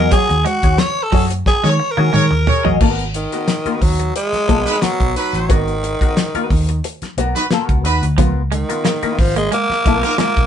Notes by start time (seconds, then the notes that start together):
Already playing: F#4 G#4 A#4 D#5
0.11 F#3 F#4 G#4 C#5, kick, closed hi-hat
0.29 D#2, muted clean electric guitar stroke, closed hi-hat
0.45 G#3 F#4, muted hollow-body jazz guitar stroke, closed hi-hat
0.63 D#2 F#4 G#4 C#5, kick, closed hi-hat
0.78 C#5, muted hollow-body jazz guitar stroke, snare, closed hi-hat
1.03 A4
1.12 F#2 F#3 F#4 G#4 C#5, kick, open hi-hat
1.30 muted hollow-body jazz guitar stroke, closed hi-hat
1.46 G#4, muted hollow-body jazz guitar stroke, kick, snare
1.64 D#3 G#3 G#4 A#4 C#5, muted hollow-body jazz guitar stroke, snare
1.70 C#5
1.80 muted clean electric guitar stroke
1.91 A#4
1.97 D#3 A#3 F#4 G#4 C#5, high tom
2.13 D#3 G#3 G#4 A#4 C#5, muted hollow-body jazz guitar stroke, mid tom
2.31 D#2, muted clean electric guitar stroke, muted hollow-body jazz guitar stroke
2.47 G#4 A#4 C#5, floor tom
2.65 A1 F#3 F#4 G#4 D#5, floor tom
2.81 G#1 B3 F#4 A#4, kick, crash
2.99 closed hi-hat
3.14 D#3, muted hollow-body jazz guitar stroke, closed hi-hat
3.32 B3 F#4 A#4, closed hi-hat
3.48 muted hollow-body jazz guitar stroke, snare, closed hi-hat
3.66 B3 F#4 B4, muted fingered electric bass stroke, closed hi-hat
3.81 D#2 F#3, muted hollow-body jazz guitar stroke, kick, open hi-hat
4.00 muted hollow-body jazz guitar stroke, closed hi-hat
4.16 G#3, muted hollow-body jazz guitar stroke, closed hi-hat
4.33 muted fingered electric bass stroke, muted hollow-body jazz guitar stroke, snare, closed hi-hat
4.49 B1 B3 F#4 A#4, kick, closed hi-hat
4.66 D#4 F#4 B4, muted hollow-body jazz guitar stroke, snare, closed hi-hat
4.82 F#3 B3 F#4 A#4, muted fingered electric bass stroke, snare, closed hi-hat
5.00 B1, kick, closed hi-hat
5.16 F#3 D#4 F#4 B4, muted hollow-body jazz guitar stroke, closed hi-hat
5.33 A1, muted hollow-body jazz guitar stroke, closed hi-hat
5.49 G#1 D#3 B3 F#4 A#4, kick, closed hi-hat
5.68 closed hi-hat
5.83 muted hollow-body jazz guitar stroke, closed hi-hat
6.01 B3 F#4 A#4, kick, closed hi-hat
6.17 muted hollow-body jazz guitar stroke, snare, closed hi-hat
6.34 B3 F#4 B4, muted fingered electric bass stroke, closed hi-hat
6.50 D#2, muted hollow-body jazz guitar stroke, kick, open hi-hat
6.69 muted hollow-body jazz guitar stroke, closed hi-hat
6.84 muted hollow-body jazz guitar stroke, closed hi-hat
7.02 muted fingered electric bass stroke, muted hollow-body jazz guitar stroke, snare, closed hi-hat
7.17 B1 B3 F#4 A#4, closed hi-hat
7.35 D#4 F#4 B4, muted hollow-body jazz guitar stroke, snare, closed hi-hat
7.51 A#3 F4 A4, snare, closed hi-hat
7.65 B3 F#4 A#4
7.69 C#2, kick, closed hi-hat
7.84 D#2 D#4 F#4 B4, muted hollow-body jazz guitar stroke, closed hi-hat
8.02 D2, muted hollow-body jazz guitar stroke, closed hi-hat
8.18 C#2 F3 B3 F4 A#4, kick, closed hi-hat
8.52 D#3 G#3, muted hollow-body jazz guitar stroke, closed hi-hat
8.69 B3 F4 A#4, muted clean electric guitar stroke, closed hi-hat
8.85 A#3, snare, closed hi-hat
9.03 B3 F4 B4, muted fingered electric bass stroke, muted clean electric guitar stroke, closed hi-hat
9.19 G#1 F3, muted hollow-body jazz guitar stroke, kick, open hi-hat
9.36 G#3 A#3, muted hollow-body jazz guitar stroke, closed hi-hat
9.52 G#3 A#3, muted hollow-body jazz guitar stroke, closed hi-hat
9.69 muted fingered electric bass stroke, muted hollow-body jazz guitar stroke, snare
9.85 B1 B3 F4 A#4, muted clean electric guitar stroke, kick, closed hi-hat
10.03 A#3 D#4 F4 A#4, muted hollow-body jazz guitar stroke, snare, closed hi-hat
10.18 G#3 A#3 F4 A#4, muted fingered electric bass stroke, snare, closed hi-hat
10.37 B1, kick, closed hi-hat